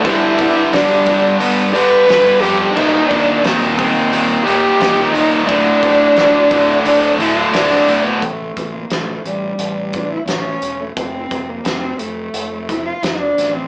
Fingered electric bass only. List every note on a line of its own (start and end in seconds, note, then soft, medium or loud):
0.05 0.28 G1 loud
0.38 0.62 G1 medium
0.72 0.96 G1 medium
1.06 1.30 G1 medium
1.39 1.63 G1 loud
1.73 1.97 G1 medium
2.07 2.31 G1 medium
2.41 2.65 F2 medium
2.77 3.00 D#1 medium
3.11 3.34 D#1 medium
3.44 3.91 D#1 medium
4.12 4.35 D#1 loud
4.45 4.69 D#1 medium
4.80 5.03 D#1 medium
5.12 5.37 C#2 medium
5.49 5.72 D1 loud
5.83 6.06 D1 medium
6.17 6.40 D1 medium
6.51 6.74 D1 medium
6.85 7.08 D1 loud
7.18 7.42 D1 medium
7.53 7.76 D1 loud
7.85 8.10 B1 medium
8.23 8.50 A1 medium
8.56 8.84 A1 medium
8.90 9.18 A1 medium
9.24 9.53 A1 medium
9.58 10.15 A1 medium
10.26 10.55 A1 medium
10.61 10.90 E1 medium
10.96 11.25 F1 medium
11.31 11.59 F1 medium
11.64 11.93 F1 medium
11.99 12.28 F1 medium
12.33 12.90 F1 medium
13.02 13.31 F1 medium
13.37 13.66 A1 medium